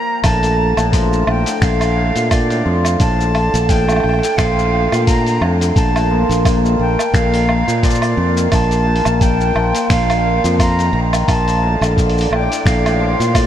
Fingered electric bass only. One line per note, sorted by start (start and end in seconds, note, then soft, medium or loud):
0.24 0.72 A#1 loud
0.77 1.23 A#1 loud
1.27 1.43 A#1 medium
1.62 2.10 A#1 loud
2.16 2.61 A#2 medium
2.66 2.95 F2 medium
3.00 3.48 A#1 loud
3.54 3.99 A#1 loud
4.04 4.20 A#1 medium
4.38 4.86 A#1 loud
4.92 5.37 A#2 medium
5.41 5.70 F2 medium
5.76 6.24 A#1 loud
6.29 6.75 A#1 loud
6.79 6.95 A#1 medium
7.13 7.62 A#1 loud
7.68 8.13 A#2 medium
8.17 8.46 F2 medium
8.52 9.00 A#1 loud
9.06 9.51 A#1 loud
9.55 9.71 A#1 medium
9.90 10.38 A#1 medium
10.44 10.89 F2 medium
10.93 11.22 A#1 loud
11.28 11.76 A#1 loud
11.81 12.27 A#1 loud
12.31 12.47 A#1 medium
12.65 13.14 A#1 loud
13.20 13.47 A#2 medium